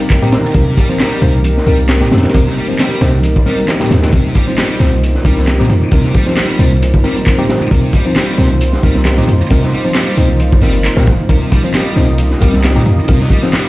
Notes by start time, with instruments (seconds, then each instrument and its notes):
Already playing: analog synth pad A#3 D#4 G4 A#4, tine electric piano C4 D#4 A#4
0.00 closed hi-hat, tambourine
0.10 kick, clap, closed hi-hat, tambourine
0.22 distorted electric guitar A#2, tine electric piano C4 D#4 G4, tambourine, high conga
0.32 snare, closed hi-hat, tambourine
0.44 tambourine, low conga
0.54 808-style bass C2, distorted electric guitar C3, tine electric piano C4 D#4 A#4, kick, closed hi-hat, tambourine, high conga
0.67 tambourine
0.77 distorted electric guitar G3, kick, closed hi-hat, tambourine
0.89 distorted electric guitar F3, tine electric piano C4 D#4 C5, tambourine, high conga
0.99 distorted electric guitar G3, snare, clap, closed hi-hat, tambourine
1.12 tambourine
1.22 808-style bass C2, distorted electric guitar C3, tine electric piano C4 D#4 C5, closed hi-hat, tambourine, high conga
1.34 tambourine
1.44 closed hi-hat, tambourine
1.57 snare, tambourine
1.67 808-style bass C2, distorted electric guitar G3, tine electric piano C4 D#4 A#4, tambourine, high conga
1.79 tambourine
1.89 snare, clap, closed hi-hat, tambourine
2.01 distorted electric guitar A#2, tine electric piano C4 D#4 G4, snare, tambourine, high conga, low conga
2.11 808-style bass F2, snare, closed hi-hat, tambourine
2.18 snare, closed hi-hat
2.23 snare, closed hi-hat, tambourine, low conga
2.29 snare, closed hi-hat
2.34 808-style bass C2, distorted electric guitar C3, tine electric piano C4 D#4 A#4, kick, closed hi-hat, tambourine, high conga
2.46 snare, tambourine
2.56 distorted electric guitar G3, tambourine
2.68 distorted electric guitar F3, tine electric piano C4 D#4 C5, tambourine, high conga
2.79 distorted electric guitar G3, snare, clap, closed hi-hat, tambourine
2.91 closed hi-hat, tambourine
3.01 808-style bass C2, distorted electric guitar C3, tine electric piano C4 D#4 C5, snare, closed hi-hat, tambourine, high conga
3.13 tambourine
3.23 closed hi-hat, tambourine
3.36 kick, tambourine
3.46 distorted electric guitar G3, tine electric piano C4 D#4 A#4, snare, open hi-hat, tambourine, high conga
3.58 closed hi-hat, tambourine
3.68 snare, clap, closed hi-hat, tambourine
3.80 distorted electric guitar A#2, tine electric piano C4 D#4 G4, snare, closed hi-hat, tambourine, high conga
3.91 808-style bass D#2, snare, closed hi-hat, tambourine
4.02 snare, closed hi-hat, tambourine, low conga
4.13 808-style bass C2, distorted electric guitar C3, tine electric piano C4 D#4 A#4, analog synth pad F4 C5, kick, closed hi-hat, tambourine, high conga
4.25 tambourine
4.35 distorted electric guitar G3, kick, closed hi-hat, tambourine
4.47 distorted electric guitar F3, tine electric piano C4 D#4 C5, tambourine, high conga
4.57 distorted electric guitar G3, snare, clap, closed hi-hat, tambourine
4.70 tambourine
4.80 808-style bass C2, distorted electric guitar C3, tine electric piano C4 D#4 C5, snare, closed hi-hat, tambourine, high conga
4.93 tambourine
5.03 closed hi-hat, tambourine
5.15 snare, tambourine
5.25 808-style bass C2, distorted electric guitar G3, tine electric piano C4 D#4 A#4, kick, closed hi-hat, tambourine, high conga
5.38 snare, tambourine
5.47 snare, clap, closed hi-hat, tambourine
5.59 distorted electric guitar A#2, tine electric piano C4 D#4 G4, snare, tambourine, high conga, low conga
5.70 808-style bass F2, closed hi-hat, tambourine
5.82 tambourine, low conga
5.92 808-style bass C2, distorted electric guitar C3, tine electric piano C4 D#4 A#4, kick, closed hi-hat, tambourine, high conga
6.04 snare, tambourine
6.14 distorted electric guitar G3, kick, closed hi-hat, tambourine
6.26 distorted electric guitar F3, tine electric piano C4 D#4 C5, snare, tambourine, high conga
6.36 distorted electric guitar G3, snare, clap, closed hi-hat, tambourine
6.49 closed hi-hat, tambourine
6.59 808-style bass C2, distorted electric guitar C3, tine electric piano C4 D#4 C5, closed hi-hat, tambourine, high conga
6.72 tambourine
6.82 closed hi-hat, tambourine
6.94 kick, tambourine
7.04 distorted electric guitar G3, tine electric piano C4 D#4 A#4, snare, open hi-hat, tambourine, high conga
7.16 closed hi-hat, tambourine
7.26 kick, clap, closed hi-hat, tambourine
7.38 distorted electric guitar A#2, tine electric piano C4 D#4 G4, tambourine, high conga
7.49 snare, closed hi-hat, tambourine
7.61 tambourine, low conga
7.71 808-style bass C2, distorted electric guitar C3, tine electric piano C4 D#4 A#4, kick, closed hi-hat, tambourine, high conga
7.84 tambourine
7.93 distorted electric guitar G3, kick, closed hi-hat, tambourine
8.06 distorted electric guitar F3, tine electric piano C4 D#4 C5, tambourine, high conga
8.16 distorted electric guitar G3, snare, clap, closed hi-hat, tambourine
8.28 tambourine
8.38 808-style bass C2, distorted electric guitar C3, tine electric piano C4 D#4 C5, snare, closed hi-hat, tambourine, high conga
8.51 tambourine
8.61 closed hi-hat, tambourine
8.73 snare, tambourine
8.83 808-style bass C2, distorted electric guitar G3, tine electric piano C4 D#4 A#4, kick, closed hi-hat, tambourine, high conga
8.95 snare, tambourine
9.05 snare, clap, closed hi-hat, tambourine
9.17 distorted electric guitar A#2, tine electric piano C4 D#4 G4, snare, tambourine, high conga, low conga
9.28 808-style bass F2, closed hi-hat, tambourine
9.40 tambourine, low conga
9.50 808-style bass C2, distorted electric guitar C3, tine electric piano C4 D#4 A#4, kick, closed hi-hat, tambourine, high conga
9.62 snare, tambourine
9.72 distorted electric guitar G3, tambourine
9.85 distorted electric guitar F3, tine electric piano C4 D#4 C5, tambourine, high conga
9.95 distorted electric guitar G3, snare, clap, closed hi-hat, tambourine
10.07 closed hi-hat, tambourine
10.17 808-style bass C2, distorted electric guitar C3, tine electric piano C4 D#4 C5, closed hi-hat, tambourine, high conga
10.30 tambourine
10.40 closed hi-hat, tambourine
10.52 kick, tambourine
10.61 808-style bass G1, distorted electric guitar G3, tine electric piano C4 D#4 A#4, snare, open hi-hat, tambourine, high conga
10.74 closed hi-hat, tambourine
10.85 clap, closed hi-hat, tambourine
10.97 808-style bass A#1, distorted electric guitar A#2, tine electric piano C4 D#4 A#4, snare, tambourine, high conga
11.07 808-style bass G1, kick, closed hi-hat, tambourine
11.19 tambourine, low conga
11.29 808-style bass C2, distorted electric guitar C3, tine electric piano C4 D#4 A#4, analog synth pad D#5, kick, closed hi-hat, tambourine, high conga
11.42 tambourine
11.51 distorted electric guitar G3, kick, closed hi-hat, tambourine
11.64 distorted electric guitar F3, tine electric piano C4 D#4 C5, tambourine, high conga
11.74 distorted electric guitar G3, snare, clap, closed hi-hat, tambourine
11.86 tambourine
11.96 808-style bass C2, distorted electric guitar C3, tine electric piano C4 D#4 C5, snare, closed hi-hat, tambourine, high conga
12.09 tambourine
12.18 closed hi-hat, tambourine
12.31 snare, tambourine
12.41 808-style bass C2, distorted electric guitar G3, tine electric piano C4 D#4 A#4, kick, closed hi-hat, tambourine, high conga
12.53 snare, tambourine
12.64 snare, clap, closed hi-hat, tambourine
12.76 distorted electric guitar A#2, tine electric piano C4 D#4 G4, snare, tambourine, high conga, low conga
12.86 808-style bass F2, closed hi-hat, tambourine
12.98 tambourine, low conga
13.08 808-style bass C2, distorted electric guitar C3, tine electric piano C4 D#4 A#4, kick, closed hi-hat, tambourine, high conga
13.21 snare, tambourine
13.30 distorted electric guitar G3, kick, closed hi-hat, tambourine
13.43 distorted electric guitar F3, tine electric piano C4 D#4 C5, snare, tambourine, high conga
13.53 distorted electric guitar G3, snare, clap, closed hi-hat, tambourine
13.66 tambourine